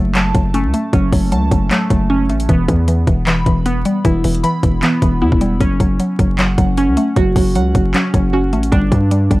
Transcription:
0.00 0.33 F#1 loud
0.00 0.14 F#3 medium
0.00 0.53 A3 medium
0.15 0.33 F#3 medium
0.15 1.31 A5 medium
0.15 clap loud
0.15 closed hi-hat medium
0.35 0.66 F#1 loud
0.35 0.92 F#3 medium
0.35 kick loud
0.35 closed hi-hat medium
0.54 1.70 A3 medium
0.54 1.52 C#4 medium
0.54 closed hi-hat medium
0.64 0.73 C#2 loud
0.74 1.71 A3 medium
0.74 closed hi-hat medium
0.93 1.12 F#1 loud
0.93 1.11 F#3 medium
0.93 2.09 C#4 medium
0.93 kick loud
0.93 closed hi-hat medium
1.13 1.34 F#1 loud
1.13 1.31 F#3 medium
1.13 kick medium
1.13 open hi-hat medium
1.32 1.51 C#2 loud
1.32 1.50 F#3 medium
1.32 2.49 A5 medium
1.32 closed hi-hat medium
1.51 1.70 F#1 loud
1.51 1.70 F#3 medium
1.51 kick medium
1.51 closed hi-hat medium
1.71 1.89 F#3 medium
1.71 2.49 A3 medium
1.71 clap loud
1.71 closed hi-hat medium
1.90 2.31 F#1 loud
1.90 2.49 F#3 medium
1.90 kick medium
1.90 closed hi-hat medium
2.10 2.49 C#4 medium
2.29 2.48 A1 loud
2.29 2.49 A3 medium
2.29 closed hi-hat soft
2.40 closed hi-hat medium
2.49 2.68 E1 loud
2.49 2.67 E3 loud
2.49 3.65 B3 medium
2.49 kick loud
2.49 closed hi-hat medium
2.68 3.06 E2 loud
2.68 2.87 E3 medium
2.68 kick medium
2.68 closed hi-hat medium
2.88 3.06 E3 medium
2.88 closed hi-hat medium
3.07 3.45 E1 loud
3.07 3.26 E3 medium
3.07 kick loud
3.07 closed hi-hat medium
3.27 3.45 E3 loud
3.27 4.42 B5 medium
3.27 clap loud
3.27 closed hi-hat medium
3.46 3.84 E1 loud
3.46 4.04 E3 medium
3.46 kick medium
3.46 closed hi-hat medium
3.66 4.82 B3 medium
3.66 4.63 B3 medium
3.66 closed hi-hat medium
3.85 4.83 G3 medium
3.85 closed hi-hat medium
4.05 4.23 E1 loud
4.05 4.23 E3 loud
4.05 5.21 E4 medium
4.05 kick loud
4.05 closed hi-hat medium
4.24 4.43 E1 loud
4.24 4.43 E3 medium
4.24 closed hi-hat medium
4.24 open hi-hat medium
4.35 closed hi-hat medium
4.43 4.62 E3 medium
4.43 5.60 B5 medium
4.43 closed hi-hat medium
4.63 4.82 E1 loud
4.63 4.82 E3 medium
4.63 kick medium
4.63 closed hi-hat medium
4.83 5.01 E3 medium
4.83 5.61 B3 loud
4.83 clap loud
4.83 closed hi-hat medium
5.02 5.23 E1 loud
5.02 5.61 E3 medium
5.02 kick medium
5.02 closed hi-hat medium
5.22 5.31 E2 loud
5.22 5.61 B3 medium
5.22 5.61 E4 medium
5.32 5.60 E1 loud
5.32 kick medium
5.41 5.61 G3 medium
5.41 closed hi-hat medium
5.60 5.79 F#1 loud
5.60 5.79 F#3 medium
5.60 6.76 C#4 medium
5.60 kick loud
5.60 closed hi-hat medium
5.80 5.99 F#1 loud
5.80 5.98 F#3 medium
5.80 kick medium
5.80 closed hi-hat medium
6.00 6.18 F#3 medium
6.00 closed hi-hat medium
6.19 6.56 F#1 loud
6.19 6.37 F#3 medium
6.19 kick medium
6.19 closed hi-hat medium
6.38 6.57 F#3 medium
6.38 7.54 F#5 medium
6.38 clap loud
6.38 closed hi-hat medium
6.58 6.89 F#1 loud
6.58 7.15 F#3 medium
6.58 kick loud
6.58 closed hi-hat medium
6.77 7.75 C#4 medium
6.77 7.93 C#4 medium
6.77 closed hi-hat medium
6.88 6.97 C#2 loud
6.97 7.94 A3 medium
6.97 closed hi-hat medium
7.16 7.35 F#1 loud
7.16 7.35 F#3 loud
7.16 8.32 F#4 medium
7.16 kick loud
7.16 closed hi-hat medium
7.36 7.57 F#1 loud
7.36 7.54 F#3 medium
7.36 kick medium
7.36 open hi-hat medium
7.55 7.74 C#2 loud
7.55 7.74 F#3 medium
7.55 8.72 F#5 medium
7.55 closed hi-hat medium
7.75 7.94 F#1 loud
7.75 7.93 F#3 medium
7.75 kick medium
7.75 closed hi-hat medium
7.94 8.13 F#3 medium
7.94 8.72 C#4 medium
7.94 clap loud
7.94 closed hi-hat medium
8.14 8.54 F#1 loud
8.14 8.72 F#3 medium
8.14 kick medium
8.14 closed hi-hat medium
8.33 8.72 C#4 medium
8.33 8.72 F#4 medium
8.53 8.71 A1 loud
8.53 8.72 A3 medium
8.53 closed hi-hat soft
8.63 closed hi-hat medium
8.72 8.91 G1 loud
8.72 8.90 G3 loud
8.72 9.40 D4 medium
8.72 kick loud
8.72 closed hi-hat medium
8.92 9.29 G2 loud
8.92 9.10 G3 medium
8.92 kick medium
8.92 closed hi-hat medium
9.11 9.30 G3 medium
9.11 closed hi-hat medium
9.31 9.40 G1 loud
9.31 9.40 G3 medium
9.31 kick medium
9.31 closed hi-hat medium

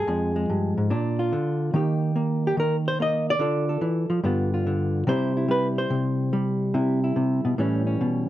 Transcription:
0.00 0.90 G#4 medium
0.07 0.48 F2 medium
0.07 0.89 F3 soft
0.07 0.35 G#3 soft
0.36 0.89 G#3 medium
0.50 0.77 G2 medium
0.78 0.90 G#2 medium
0.90 1.32 A#2 medium
0.90 1.75 D4 medium
1.19 1.72 F4 medium
1.33 1.74 D3 medium
1.74 2.56 D#3 medium
1.74 2.14 A#3 soft
1.74 3.39 D#4 soft
1.74 2.44 G4 medium
2.16 2.99 A#3 medium
2.47 2.59 G4 medium
2.57 3.39 D#3 medium
2.57 2.76 A#4 loud
2.88 3.00 C5 loud
3.00 3.39 A#3 medium
3.00 3.28 D#5 medium
3.30 5.09 D5 loud
3.39 3.81 D3 medium
3.39 4.22 F4 soft
3.39 3.68 A4 soft
3.69 4.22 A4 soft
3.81 4.09 E3 medium
4.10 4.23 F3 medium
4.24 5.05 G2 medium
4.24 4.66 D3 medium
4.24 5.08 B3 soft
4.24 4.53 F4 medium
4.54 5.06 F4 soft
4.67 5.07 D3 medium
5.07 5.89 C3 medium
5.07 5.48 G3 medium
5.07 6.73 C4 soft
5.07 5.36 E4 soft
5.07 5.50 C5 loud
5.37 6.74 E4 soft
5.48 6.32 G3 medium
5.48 5.67 B4 medium
5.78 7.58 C5 medium
5.90 6.72 C3 medium
6.33 7.59 G3 medium
6.74 7.15 C3 medium
6.74 7.02 E4 medium
7.04 7.57 E4 soft
7.16 7.44 C3 medium
7.45 7.58 B2 medium
7.58 8.00 A2 medium
7.58 8.29 E3 medium
7.58 8.29 G3 medium
7.58 7.86 C#4 soft
7.87 8.29 C#4 soft
8.01 8.28 B2 medium

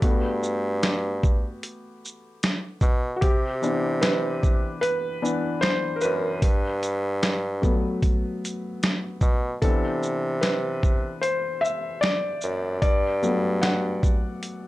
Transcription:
0.00 1.59 G2 loud
0.00 1.19 A3 soft
0.00 1.19 B3 medium
0.00 1.18 F#4 medium
0.00 0.38 G4 medium
0.00 kick loud
0.00 closed hi-hat medium
0.43 shaker soft
0.83 snare loud
0.83 closed hi-hat medium
1.23 kick medium
1.23 shaker soft
1.63 closed hi-hat medium
2.05 shaker medium
2.43 snare loud
2.43 closed hi-hat medium
2.81 3.17 B2 medium
2.81 kick medium
2.81 shaker soft
3.16 3.22 F#4 medium
3.21 4.79 C3 loud
3.21 4.04 G4 medium
3.21 kick loud
3.21 closed hi-hat medium
3.62 4.78 E3 soft
3.62 4.79 B3 soft
3.62 4.79 D4 medium
3.62 shaker soft
4.01 4.78 B4 medium
4.01 snare loud
4.01 closed hi-hat medium
4.43 kick medium
4.43 shaker soft
4.81 5.64 B4 loud
4.81 closed hi-hat medium
5.22 5.58 E3 medium
5.22 5.58 B3 soft
5.22 5.58 D4 medium
5.22 shaker medium
5.61 5.98 C5 loud
5.61 snare loud
5.61 closed hi-hat medium
5.96 6.02 A#4 medium
6.01 6.38 F#2 medium
6.01 6.78 B4 medium
6.01 shaker soft
6.42 7.99 G2 loud
6.42 kick loud
6.42 closed hi-hat medium
6.83 closed hi-hat soft
6.83 shaker soft
7.23 snare loud
7.23 closed hi-hat medium
7.62 8.78 F#3 soft
7.62 8.78 A3 soft
7.62 8.79 B3 medium
7.62 kick medium
7.62 shaker soft
8.02 kick medium
8.02 closed hi-hat medium
8.45 closed hi-hat medium
8.45 shaker medium
8.83 snare loud
8.83 closed hi-hat medium
9.21 9.57 B2 medium
9.21 kick medium
9.21 shaker soft
9.62 11.19 C3 loud
9.62 10.78 E3 medium
9.62 10.79 B3 soft
9.62 10.79 D4 medium
9.62 10.44 A4 medium
9.62 kick loud
9.62 closed hi-hat medium
10.03 shaker soft
10.41 11.24 B4 medium
10.41 snare loud
10.41 closed hi-hat medium
10.83 kick medium
10.83 shaker soft
11.21 11.63 C5 medium
11.21 closed hi-hat medium
11.61 12.03 E5 loud
11.61 shaker soft
12.01 12.78 D5 medium
12.01 snare loud
12.01 closed hi-hat medium
12.41 12.78 F#2 medium
12.41 shaker soft
12.82 14.38 G2 loud
12.82 13.64 D5 medium
12.82 kick loud
12.82 closed hi-hat medium
13.22 13.80 F#3 medium
13.22 13.80 A3 soft
13.22 13.80 B3 soft
13.22 shaker soft
13.62 14.68 F#5 medium
13.62 snare loud
13.62 closed hi-hat medium
14.03 kick medium
14.03 shaker soft
14.43 closed hi-hat medium

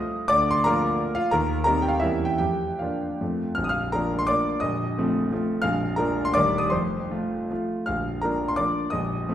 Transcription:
0.00 0.26 F3 medium
0.00 0.26 A3 medium
0.00 0.26 F4 medium
0.00 0.25 D#5 medium
0.00 0.28 D#6 loud
0.28 0.64 D2 medium
0.28 0.51 D5 loud
0.28 0.52 D6 loud
0.51 0.64 C6 loud
0.64 1.29 F3 medium
0.64 1.29 A#3 medium
0.64 1.14 F4 medium
0.64 1.13 A#4 medium
0.64 1.16 A#5 loud
1.15 1.31 F4 medium
1.15 1.32 F5 loud
1.31 1.66 D#2 medium
1.31 1.64 A#4 medium
1.31 1.63 A#5 loud
1.64 1.99 G3 medium
1.64 1.99 C4 medium
1.64 2.00 D#4 medium
1.64 1.83 A#4 medium
1.64 1.83 A#5 loud
1.82 1.89 G5 medium
1.89 2.02 F5 loud
2.00 2.40 E2 medium
2.00 2.37 G3 soft
2.00 2.25 E4 medium
2.00 2.26 E5 medium
2.04 2.38 A#3 soft
2.04 2.38 C#4 soft
2.25 2.37 G5 medium
2.38 2.80 F2 medium
2.38 2.78 G4 medium
2.38 2.80 G5 medium
2.79 3.17 F3 soft
2.79 3.17 A#3 soft
2.79 3.18 D4 medium
2.79 3.35 F4 soft
2.79 3.39 F5 medium
3.21 3.57 F2 medium
3.21 3.55 F3 soft
3.21 3.55 A3 soft
3.21 3.55 C4 soft
3.55 3.93 A#0 medium
3.55 3.93 A#1 medium
3.55 3.64 F6 loud
3.64 3.72 D#6 medium
3.69 3.92 F5 medium
3.69 3.93 F6 loud
3.92 4.26 F3 medium
3.92 4.26 A#3 medium
3.92 4.26 D4 medium
3.92 4.18 A#4 medium
3.92 4.20 A#5 loud
4.19 4.28 C6 loud
4.27 4.60 F3 soft
4.27 4.60 A#3 medium
4.27 4.60 D4 medium
4.27 4.60 D5 medium
4.27 4.62 D6 loud
4.60 4.96 A#0 medium
4.60 4.96 A#1 medium
4.60 5.59 D#5 medium
4.60 5.63 D#6 loud
4.98 5.28 F3 medium
4.98 5.29 A3 medium
4.98 5.29 C4 medium
5.32 5.61 F3 medium
5.32 5.61 A3 medium
5.32 5.61 C4 medium
5.62 5.98 A#0 medium
5.62 5.98 A#1 medium
5.62 5.96 F5 loud
5.62 5.98 F6 loud
5.96 6.33 F3 medium
5.96 6.33 A#3 medium
5.96 6.33 D4 medium
5.96 6.25 A#4 medium
5.96 6.26 A#5 loud
6.25 6.35 C6 loud
6.34 6.72 D#1 medium
6.34 6.72 D#2 medium
6.34 6.69 G3 medium
6.34 6.69 A#3 medium
6.34 6.70 D#4 medium
6.34 6.58 D5 medium
6.34 6.59 D6 loud
6.58 6.72 D#6 loud
6.70 7.09 F1 medium
6.70 7.09 F2 medium
6.70 7.65 C5 medium
6.70 7.68 C6 medium
7.11 7.46 F3 medium
7.11 7.46 A3 medium
7.11 7.47 F4 medium
7.50 7.84 F3 soft
7.50 7.84 A3 soft
7.50 7.85 F4 medium
7.86 8.22 A#0 medium
7.86 8.23 A#1 medium
7.86 8.21 F5 medium
7.86 8.23 F6 medium
8.22 8.56 F3 medium
8.22 8.56 A#3 medium
8.22 8.57 D4 medium
8.22 8.48 A#4 medium
8.22 8.50 A#5 medium
8.48 8.58 C6 medium
8.56 8.89 F3 medium
8.56 8.90 A#3 soft
8.56 8.90 D4 medium
8.56 8.89 D5 medium
8.56 8.91 D6 loud
8.90 9.27 A#0 medium
8.90 9.27 A#1 medium
8.90 9.35 D#5 medium
8.90 9.35 D#6 loud
9.28 9.35 F3 medium
9.28 9.35 A3 medium
9.28 9.35 C4 medium

